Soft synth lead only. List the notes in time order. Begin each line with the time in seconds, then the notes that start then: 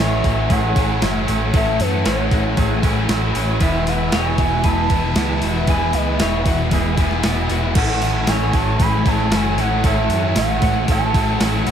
0.00 E5
0.52 F#5
1.56 E5
1.81 B4
2.05 C#5
3.63 E5
3.89 F#5
4.15 G#5
4.65 A5
5.68 G#5
5.94 D#5
6.21 E5
7.76 F#5
8.29 G#5
8.56 A5
8.82 B5
9.08 A5
9.35 G#5
9.60 F#5
9.87 E5
10.39 F#5
10.91 A5